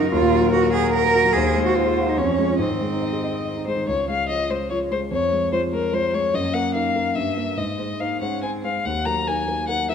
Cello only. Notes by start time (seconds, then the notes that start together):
Already playing: D#4
0.12 F4
0.53 F#4
0.73 G#4
0.94 A#4
1.33 G#4
1.66 F#4
1.76 F4
2.09 D#4
2.19 C#4
2.61 C4
4.30 F3
4.71 F3
5.53 G#3
5.93 G#3
6.34 A#3
7.17 A#3
7.58 G#3
8.00 A#3
8.21 C#4
8.44 C4
8.86 A#3